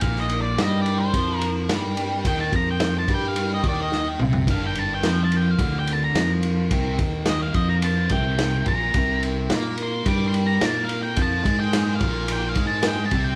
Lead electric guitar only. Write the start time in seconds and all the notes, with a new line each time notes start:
0.01 F5
0.20 D#5
0.42 D5
0.62 D#5
0.81 D5
0.98 C5
1.38 A#4
2.27 G5
2.40 A5
2.56 A#5
2.71 G5
2.99 A5
3.14 G5
3.28 F5
3.54 D#5
3.68 D5
3.82 D#5
4.51 F5
4.67 G5
4.78 A5
4.95 G5
5.24 A5
5.37 G5
5.51 F5
5.79 G5
5.92 A5
6.04 A#5
7.29 D#5
7.43 F5
7.55 D#5
7.69 A#5
7.84 A5
8.11 G5
8.68 A#5
9.83 C6
10.09 D6
10.28 C6
10.47 A#5
10.65 A5
10.84 F5
11.03 G5
11.22 A5
11.60 G5
11.96 F5
12.33 G5
12.49 F5
12.67 A5
12.87 G5
13.06 A5
13.24 G5